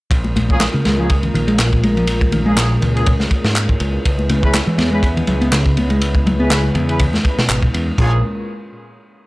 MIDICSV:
0, 0, Header, 1, 7, 480
1, 0, Start_track
1, 0, Tempo, 491803
1, 112, Time_signature, 4, 2, 24, 8
1, 9046, End_track
2, 0, Start_track
2, 0, Title_t, "Brass ensemble"
2, 0, Program_c, 0, 61
2, 486, Note_on_c, 0, 61, 78
2, 487, Note_on_c, 0, 58, 84
2, 487, Note_on_c, 0, 68, 93
2, 488, Note_on_c, 0, 65, 72
2, 609, Note_off_c, 0, 61, 0
2, 610, Note_off_c, 0, 58, 0
2, 610, Note_off_c, 0, 65, 0
2, 610, Note_off_c, 0, 68, 0
2, 965, Note_on_c, 0, 58, 72
2, 966, Note_on_c, 0, 61, 69
2, 966, Note_on_c, 0, 65, 66
2, 966, Note_on_c, 0, 68, 78
2, 1089, Note_off_c, 0, 58, 0
2, 1089, Note_off_c, 0, 61, 0
2, 1089, Note_off_c, 0, 65, 0
2, 1089, Note_off_c, 0, 68, 0
2, 2403, Note_on_c, 0, 68, 90
2, 2404, Note_on_c, 0, 61, 70
2, 2405, Note_on_c, 0, 58, 79
2, 2405, Note_on_c, 0, 65, 71
2, 2616, Note_off_c, 0, 68, 0
2, 2617, Note_off_c, 0, 58, 0
2, 2617, Note_off_c, 0, 61, 0
2, 2618, Note_off_c, 0, 65, 0
2, 2885, Note_on_c, 0, 58, 71
2, 2885, Note_on_c, 0, 65, 69
2, 2886, Note_on_c, 0, 61, 70
2, 2886, Note_on_c, 0, 68, 83
2, 3009, Note_off_c, 0, 58, 0
2, 3009, Note_off_c, 0, 61, 0
2, 3009, Note_off_c, 0, 65, 0
2, 3009, Note_off_c, 0, 68, 0
2, 4323, Note_on_c, 0, 64, 75
2, 4323, Note_on_c, 0, 68, 78
2, 4323, Note_on_c, 0, 71, 91
2, 4324, Note_on_c, 0, 61, 83
2, 4448, Note_off_c, 0, 61, 0
2, 4448, Note_off_c, 0, 64, 0
2, 4448, Note_off_c, 0, 68, 0
2, 4448, Note_off_c, 0, 71, 0
2, 4803, Note_on_c, 0, 61, 72
2, 4803, Note_on_c, 0, 68, 73
2, 4803, Note_on_c, 0, 71, 86
2, 4804, Note_on_c, 0, 64, 68
2, 4928, Note_off_c, 0, 61, 0
2, 4928, Note_off_c, 0, 64, 0
2, 4928, Note_off_c, 0, 68, 0
2, 4928, Note_off_c, 0, 71, 0
2, 6244, Note_on_c, 0, 61, 81
2, 6244, Note_on_c, 0, 71, 86
2, 6245, Note_on_c, 0, 64, 75
2, 6245, Note_on_c, 0, 68, 73
2, 6457, Note_off_c, 0, 61, 0
2, 6457, Note_off_c, 0, 68, 0
2, 6457, Note_off_c, 0, 71, 0
2, 6458, Note_off_c, 0, 64, 0
2, 6724, Note_on_c, 0, 61, 75
2, 6724, Note_on_c, 0, 64, 69
2, 6725, Note_on_c, 0, 68, 69
2, 6725, Note_on_c, 0, 71, 80
2, 6848, Note_off_c, 0, 61, 0
2, 6848, Note_off_c, 0, 64, 0
2, 6849, Note_off_c, 0, 68, 0
2, 6849, Note_off_c, 0, 71, 0
2, 7794, Note_on_c, 0, 61, 81
2, 7794, Note_on_c, 0, 68, 95
2, 7795, Note_on_c, 0, 58, 86
2, 7795, Note_on_c, 0, 65, 80
2, 7976, Note_off_c, 0, 61, 0
2, 7976, Note_off_c, 0, 68, 0
2, 7977, Note_off_c, 0, 58, 0
2, 7977, Note_off_c, 0, 65, 0
2, 9046, End_track
3, 0, Start_track
3, 0, Title_t, "Analog synth pad"
3, 0, Program_c, 1, 89
3, 106, Note_on_c, 1, 61, 72
3, 106, Note_on_c, 1, 70, 88
3, 107, Note_on_c, 1, 56, 74
3, 107, Note_on_c, 1, 58, 72
3, 109, Note_on_c, 1, 65, 74
3, 3673, Note_off_c, 1, 58, 0
3, 3673, Note_off_c, 1, 70, 0
3, 3674, Note_off_c, 1, 65, 0
3, 3710, Note_on_c, 1, 59, 76
3, 3710, Note_on_c, 1, 64, 73
3, 3712, Note_on_c, 1, 71, 90
3, 7750, Note_off_c, 1, 61, 0
3, 7751, Note_off_c, 1, 56, 0
3, 7752, Note_off_c, 1, 59, 0
3, 7752, Note_off_c, 1, 64, 0
3, 7753, Note_off_c, 1, 71, 0
3, 7785, Note_on_c, 1, 61, 66
3, 7788, Note_on_c, 1, 58, 68
3, 7788, Note_on_c, 1, 65, 70
3, 7789, Note_on_c, 1, 70, 78
3, 7790, Note_on_c, 1, 56, 74
3, 8012, Note_off_c, 1, 61, 0
3, 8013, Note_off_c, 1, 58, 0
3, 8013, Note_off_c, 1, 65, 0
3, 8014, Note_off_c, 1, 56, 0
3, 8014, Note_off_c, 1, 70, 0
3, 9046, End_track
4, 0, Start_track
4, 0, Title_t, "Picked electric bass"
4, 0, Program_c, 2, 34
4, 351, Note_on_c, 2, 46, 67
4, 452, Note_off_c, 2, 46, 0
4, 723, Note_on_c, 2, 49, 92
4, 822, Note_off_c, 2, 49, 0
4, 828, Note_on_c, 2, 56, 74
4, 949, Note_off_c, 2, 56, 0
4, 964, Note_on_c, 2, 53, 72
4, 1047, Note_off_c, 2, 53, 0
4, 1312, Note_on_c, 2, 51, 71
4, 1372, Note_off_c, 2, 51, 0
4, 1440, Note_on_c, 2, 56, 96
4, 1539, Note_off_c, 2, 56, 0
4, 1546, Note_on_c, 2, 46, 80
4, 1778, Note_off_c, 2, 46, 0
4, 1792, Note_on_c, 2, 56, 76
4, 1910, Note_off_c, 2, 56, 0
4, 1922, Note_on_c, 2, 53, 68
4, 2006, Note_off_c, 2, 53, 0
4, 2271, Note_on_c, 2, 51, 73
4, 2332, Note_off_c, 2, 51, 0
4, 2399, Note_on_c, 2, 56, 96
4, 2499, Note_off_c, 2, 56, 0
4, 2508, Note_on_c, 2, 46, 81
4, 2979, Note_off_c, 2, 46, 0
4, 2988, Note_on_c, 2, 46, 83
4, 3051, Note_off_c, 2, 46, 0
4, 3359, Note_on_c, 2, 44, 77
4, 3588, Note_off_c, 2, 44, 0
4, 3600, Note_on_c, 2, 44, 71
4, 3652, Note_off_c, 2, 44, 0
4, 4191, Note_on_c, 2, 49, 70
4, 4292, Note_off_c, 2, 49, 0
4, 4560, Note_on_c, 2, 52, 96
4, 4660, Note_off_c, 2, 52, 0
4, 4666, Note_on_c, 2, 59, 83
4, 4787, Note_off_c, 2, 59, 0
4, 4797, Note_on_c, 2, 56, 75
4, 4883, Note_off_c, 2, 56, 0
4, 5149, Note_on_c, 2, 54, 75
4, 5211, Note_off_c, 2, 54, 0
4, 5282, Note_on_c, 2, 59, 98
4, 5380, Note_off_c, 2, 59, 0
4, 5389, Note_on_c, 2, 49, 83
4, 5620, Note_off_c, 2, 49, 0
4, 5632, Note_on_c, 2, 59, 75
4, 5750, Note_off_c, 2, 59, 0
4, 5763, Note_on_c, 2, 56, 70
4, 5846, Note_off_c, 2, 56, 0
4, 6112, Note_on_c, 2, 54, 73
4, 6172, Note_off_c, 2, 54, 0
4, 6244, Note_on_c, 2, 59, 102
4, 6342, Note_off_c, 2, 59, 0
4, 6351, Note_on_c, 2, 49, 83
4, 6821, Note_off_c, 2, 49, 0
4, 6830, Note_on_c, 2, 49, 86
4, 6892, Note_off_c, 2, 49, 0
4, 7204, Note_on_c, 2, 47, 74
4, 7431, Note_off_c, 2, 47, 0
4, 7444, Note_on_c, 2, 47, 72
4, 7493, Note_off_c, 2, 47, 0
4, 7791, Note_on_c, 2, 46, 96
4, 8014, Note_off_c, 2, 46, 0
4, 9046, End_track
5, 0, Start_track
5, 0, Title_t, "Picked electric bass"
5, 0, Program_c, 3, 34
5, 104, Note_on_c, 3, 34, 95
5, 645, Note_off_c, 3, 34, 0
5, 833, Note_on_c, 3, 37, 78
5, 1251, Note_off_c, 3, 37, 0
5, 1309, Note_on_c, 3, 34, 87
5, 2689, Note_off_c, 3, 34, 0
5, 2752, Note_on_c, 3, 37, 79
5, 3171, Note_off_c, 3, 37, 0
5, 3711, Note_on_c, 3, 37, 99
5, 3875, Note_off_c, 3, 37, 0
5, 3957, Note_on_c, 3, 37, 99
5, 4492, Note_off_c, 3, 37, 0
5, 4667, Note_on_c, 3, 40, 83
5, 5088, Note_off_c, 3, 40, 0
5, 5149, Note_on_c, 3, 37, 91
5, 6530, Note_off_c, 3, 37, 0
5, 6585, Note_on_c, 3, 40, 82
5, 7007, Note_off_c, 3, 40, 0
5, 7307, Note_on_c, 3, 32, 99
5, 7473, Note_off_c, 3, 32, 0
5, 7551, Note_on_c, 3, 40, 89
5, 7715, Note_off_c, 3, 40, 0
5, 7789, Note_on_c, 3, 34, 98
5, 8014, Note_off_c, 3, 34, 0
5, 9046, End_track
6, 0, Start_track
6, 0, Title_t, "Muted picked electric bass strokes"
6, 7204, Note_on_c, 9, 29, 41
6, 7302, Note_off_c, 9, 29, 0
6, 9046, End_track
7, 0, Start_track
7, 0, Title_t, "Drums"
7, 104, Note_on_c, 9, 36, 106
7, 109, Note_on_c, 9, 51, 87
7, 202, Note_off_c, 9, 36, 0
7, 207, Note_off_c, 9, 51, 0
7, 237, Note_on_c, 9, 62, 51
7, 335, Note_off_c, 9, 62, 0
7, 352, Note_on_c, 9, 63, 89
7, 356, Note_on_c, 9, 51, 66
7, 450, Note_off_c, 9, 63, 0
7, 453, Note_off_c, 9, 51, 0
7, 478, Note_on_c, 9, 64, 92
7, 487, Note_on_c, 9, 36, 88
7, 576, Note_off_c, 9, 64, 0
7, 585, Note_off_c, 9, 36, 0
7, 589, Note_on_c, 9, 38, 122
7, 591, Note_on_c, 9, 39, 100
7, 597, Note_on_c, 9, 51, 89
7, 687, Note_off_c, 9, 38, 0
7, 689, Note_off_c, 9, 39, 0
7, 694, Note_off_c, 9, 51, 0
7, 721, Note_on_c, 9, 62, 34
7, 818, Note_off_c, 9, 62, 0
7, 831, Note_on_c, 9, 51, 63
7, 833, Note_on_c, 9, 64, 85
7, 835, Note_on_c, 9, 38, 48
7, 929, Note_off_c, 9, 51, 0
7, 931, Note_off_c, 9, 64, 0
7, 932, Note_off_c, 9, 38, 0
7, 1069, Note_on_c, 9, 51, 77
7, 1075, Note_on_c, 9, 36, 100
7, 1167, Note_off_c, 9, 51, 0
7, 1173, Note_off_c, 9, 36, 0
7, 1200, Note_on_c, 9, 51, 39
7, 1204, Note_on_c, 9, 64, 89
7, 1297, Note_off_c, 9, 51, 0
7, 1301, Note_off_c, 9, 64, 0
7, 1319, Note_on_c, 9, 51, 65
7, 1417, Note_off_c, 9, 51, 0
7, 1443, Note_on_c, 9, 51, 45
7, 1540, Note_off_c, 9, 51, 0
7, 1545, Note_on_c, 9, 51, 87
7, 1552, Note_on_c, 9, 38, 117
7, 1554, Note_on_c, 9, 39, 100
7, 1642, Note_off_c, 9, 51, 0
7, 1649, Note_off_c, 9, 38, 0
7, 1651, Note_off_c, 9, 39, 0
7, 1686, Note_on_c, 9, 36, 97
7, 1784, Note_off_c, 9, 36, 0
7, 1790, Note_on_c, 9, 51, 64
7, 1793, Note_on_c, 9, 63, 65
7, 1888, Note_off_c, 9, 51, 0
7, 1891, Note_off_c, 9, 63, 0
7, 1923, Note_on_c, 9, 51, 40
7, 2021, Note_off_c, 9, 51, 0
7, 2023, Note_on_c, 9, 51, 86
7, 2121, Note_off_c, 9, 51, 0
7, 2160, Note_on_c, 9, 36, 93
7, 2165, Note_on_c, 9, 62, 49
7, 2257, Note_off_c, 9, 36, 0
7, 2263, Note_off_c, 9, 62, 0
7, 2266, Note_on_c, 9, 51, 67
7, 2266, Note_on_c, 9, 63, 88
7, 2364, Note_off_c, 9, 51, 0
7, 2364, Note_off_c, 9, 63, 0
7, 2511, Note_on_c, 9, 38, 101
7, 2511, Note_on_c, 9, 39, 110
7, 2512, Note_on_c, 9, 51, 94
7, 2609, Note_off_c, 9, 38, 0
7, 2609, Note_off_c, 9, 39, 0
7, 2609, Note_off_c, 9, 51, 0
7, 2749, Note_on_c, 9, 64, 101
7, 2754, Note_on_c, 9, 51, 64
7, 2847, Note_off_c, 9, 64, 0
7, 2852, Note_off_c, 9, 51, 0
7, 2894, Note_on_c, 9, 51, 45
7, 2989, Note_off_c, 9, 51, 0
7, 2989, Note_on_c, 9, 51, 86
7, 2997, Note_on_c, 9, 36, 109
7, 3087, Note_off_c, 9, 51, 0
7, 3094, Note_off_c, 9, 36, 0
7, 3122, Note_on_c, 9, 38, 50
7, 3123, Note_on_c, 9, 63, 63
7, 3219, Note_off_c, 9, 38, 0
7, 3221, Note_off_c, 9, 63, 0
7, 3229, Note_on_c, 9, 36, 89
7, 3229, Note_on_c, 9, 51, 66
7, 3326, Note_off_c, 9, 36, 0
7, 3326, Note_off_c, 9, 51, 0
7, 3362, Note_on_c, 9, 38, 101
7, 3460, Note_off_c, 9, 38, 0
7, 3471, Note_on_c, 9, 51, 85
7, 3472, Note_on_c, 9, 39, 105
7, 3569, Note_off_c, 9, 39, 0
7, 3569, Note_off_c, 9, 51, 0
7, 3603, Note_on_c, 9, 36, 93
7, 3701, Note_off_c, 9, 36, 0
7, 3709, Note_on_c, 9, 51, 69
7, 3806, Note_off_c, 9, 51, 0
7, 3956, Note_on_c, 9, 51, 92
7, 3958, Note_on_c, 9, 36, 115
7, 4054, Note_off_c, 9, 51, 0
7, 4056, Note_off_c, 9, 36, 0
7, 4086, Note_on_c, 9, 62, 56
7, 4183, Note_off_c, 9, 62, 0
7, 4191, Note_on_c, 9, 51, 70
7, 4194, Note_on_c, 9, 63, 91
7, 4289, Note_off_c, 9, 51, 0
7, 4292, Note_off_c, 9, 63, 0
7, 4324, Note_on_c, 9, 36, 97
7, 4328, Note_on_c, 9, 64, 84
7, 4422, Note_off_c, 9, 36, 0
7, 4426, Note_off_c, 9, 64, 0
7, 4429, Note_on_c, 9, 51, 83
7, 4432, Note_on_c, 9, 38, 119
7, 4433, Note_on_c, 9, 39, 112
7, 4526, Note_off_c, 9, 51, 0
7, 4529, Note_off_c, 9, 38, 0
7, 4530, Note_off_c, 9, 39, 0
7, 4564, Note_on_c, 9, 62, 39
7, 4661, Note_off_c, 9, 62, 0
7, 4666, Note_on_c, 9, 64, 88
7, 4670, Note_on_c, 9, 51, 70
7, 4675, Note_on_c, 9, 38, 54
7, 4764, Note_off_c, 9, 64, 0
7, 4767, Note_off_c, 9, 51, 0
7, 4773, Note_off_c, 9, 38, 0
7, 4907, Note_on_c, 9, 36, 96
7, 4915, Note_on_c, 9, 51, 85
7, 5005, Note_off_c, 9, 36, 0
7, 5013, Note_off_c, 9, 51, 0
7, 5047, Note_on_c, 9, 51, 47
7, 5048, Note_on_c, 9, 64, 108
7, 5144, Note_off_c, 9, 51, 0
7, 5145, Note_off_c, 9, 64, 0
7, 5145, Note_on_c, 9, 51, 62
7, 5243, Note_off_c, 9, 51, 0
7, 5284, Note_on_c, 9, 51, 44
7, 5382, Note_off_c, 9, 51, 0
7, 5392, Note_on_c, 9, 38, 121
7, 5392, Note_on_c, 9, 39, 112
7, 5392, Note_on_c, 9, 51, 98
7, 5489, Note_off_c, 9, 38, 0
7, 5490, Note_off_c, 9, 39, 0
7, 5490, Note_off_c, 9, 51, 0
7, 5521, Note_on_c, 9, 36, 94
7, 5618, Note_off_c, 9, 36, 0
7, 5630, Note_on_c, 9, 51, 72
7, 5638, Note_on_c, 9, 63, 64
7, 5728, Note_off_c, 9, 51, 0
7, 5736, Note_off_c, 9, 63, 0
7, 5758, Note_on_c, 9, 51, 47
7, 5855, Note_off_c, 9, 51, 0
7, 5870, Note_on_c, 9, 51, 90
7, 5967, Note_off_c, 9, 51, 0
7, 5999, Note_on_c, 9, 36, 83
7, 6005, Note_on_c, 9, 62, 50
7, 6096, Note_off_c, 9, 36, 0
7, 6103, Note_off_c, 9, 62, 0
7, 6115, Note_on_c, 9, 63, 91
7, 6117, Note_on_c, 9, 51, 59
7, 6213, Note_off_c, 9, 63, 0
7, 6214, Note_off_c, 9, 51, 0
7, 6347, Note_on_c, 9, 51, 80
7, 6348, Note_on_c, 9, 38, 118
7, 6352, Note_on_c, 9, 39, 115
7, 6444, Note_off_c, 9, 51, 0
7, 6446, Note_off_c, 9, 38, 0
7, 6449, Note_off_c, 9, 39, 0
7, 6479, Note_on_c, 9, 62, 38
7, 6576, Note_off_c, 9, 62, 0
7, 6587, Note_on_c, 9, 51, 64
7, 6594, Note_on_c, 9, 64, 97
7, 6685, Note_off_c, 9, 51, 0
7, 6692, Note_off_c, 9, 64, 0
7, 6724, Note_on_c, 9, 51, 45
7, 6822, Note_off_c, 9, 51, 0
7, 6826, Note_on_c, 9, 51, 96
7, 6830, Note_on_c, 9, 36, 101
7, 6924, Note_off_c, 9, 51, 0
7, 6928, Note_off_c, 9, 36, 0
7, 6960, Note_on_c, 9, 63, 70
7, 6969, Note_on_c, 9, 38, 54
7, 7058, Note_off_c, 9, 63, 0
7, 7066, Note_off_c, 9, 38, 0
7, 7073, Note_on_c, 9, 51, 64
7, 7074, Note_on_c, 9, 36, 86
7, 7171, Note_off_c, 9, 36, 0
7, 7171, Note_off_c, 9, 51, 0
7, 7209, Note_on_c, 9, 38, 105
7, 7306, Note_off_c, 9, 38, 0
7, 7313, Note_on_c, 9, 39, 107
7, 7313, Note_on_c, 9, 51, 88
7, 7410, Note_off_c, 9, 39, 0
7, 7411, Note_off_c, 9, 51, 0
7, 7442, Note_on_c, 9, 36, 86
7, 7540, Note_off_c, 9, 36, 0
7, 7557, Note_on_c, 9, 51, 68
7, 7655, Note_off_c, 9, 51, 0
7, 7791, Note_on_c, 9, 36, 107
7, 7792, Note_on_c, 9, 49, 88
7, 7888, Note_off_c, 9, 36, 0
7, 7890, Note_off_c, 9, 49, 0
7, 9046, End_track
0, 0, End_of_file